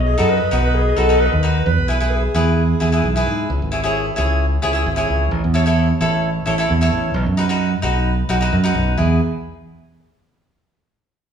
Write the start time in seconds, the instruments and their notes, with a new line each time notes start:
Already playing: fingered electric bass B1
0.00 steel pan D#5
0.06 alto saxophone G#4, steel pan D#5
0.14 cavaquinho D#4, alto saxophone A4, steel pan D#5
0.18 fingered electric bass F#2, cavaquinho F#4 B4, steel pan D#5
0.29 alto saxophone B4, steel pan D#5
0.37 steel pan D#5
0.45 steel pan D#5
0.51 fingered electric bass B1, cavaquinho D#4 F#4 B4, steel pan D#5
0.59 steel pan D#5
0.64 alto saxophone B4, steel pan D#5
0.75 alto saxophone G#4, steel pan D#5
0.82 steel pan D#5
0.89 steel pan D#5
0.96 fingered electric bass B1, cavaquinho D#4 F#4 B4, alto saxophone A4, steel pan D#5
1.03 steel pan D#5
1.09 cavaquinho D#4 F#4 B4, steel pan D#5
1.18 alto saxophone B4, steel pan D#5
1.26 steel pan D#5
1.32 fingered electric bass D#2
1.43 cavaquinho D#4 F#4 B4
1.65 fingered electric bass E2, alto saxophone B4
1.78 fingered electric bass B1
1.88 cavaquinho E4 G#4 B4
2.00 cavaquinho E4 G#4 B4
2.10 alto saxophone G#4
2.34 fingered electric bass E2, cavaquinho E4 G#4 B4
2.56 alto saxophone G#4
2.80 fingered electric bass E2, cavaquinho E4 G#4 B4
2.92 cavaquinho E4 G#4 B4
3.04 fingered electric bass B1
3.16 cavaquinho E4 G#4 B4
3.27 fingered electric bass G#2
3.50 fingered electric bass C#2
3.62 fingered electric bass G#1
3.72 cavaquinho E4 G#4 C#5
3.84 cavaquinho E4 G#4 C#5
4.16 fingered electric bass C#2, cavaquinho E4 G#4 C#5
4.62 fingered electric bass C#2, cavaquinho E4 G#4 C#5
4.73 cavaquinho E4 G#4 C#5
4.86 fingered electric bass G#1
4.96 cavaquinho E4 G#4 C#5
5.09 fingered electric bass C#2
5.31 fingered electric bass A1
5.44 fingered electric bass E2
5.54 cavaquinho E4 A4 C#5
5.66 cavaquinho E4 A4 C#5
6.01 fingered electric bass A1, cavaquinho E4 A4 C#5
6.46 fingered electric bass A1, cavaquinho E4 A4 C#5
6.58 cavaquinho E4 A4 C#5
6.70 fingered electric bass E2
6.81 cavaquinho E4 A4 C#5
6.92 fingered electric bass A1
7.14 fingered electric bass B1
7.26 fingered electric bass F#2
7.37 cavaquinho D#4 F#4 B4
7.49 cavaquinho D#4 F#4 B4
7.82 fingered electric bass B1, cavaquinho D#4 F#4 B4
8.29 fingered electric bass B1, cavaquinho D#4 F#4 B4
8.41 cavaquinho D#4 F#4 B4
8.53 fingered electric bass F#2
8.64 cavaquinho D#4 F#4 B4
8.74 fingered electric bass B1
8.98 fingered electric bass E2, cavaquinho E4 G#4 B4, alto saxophone G#4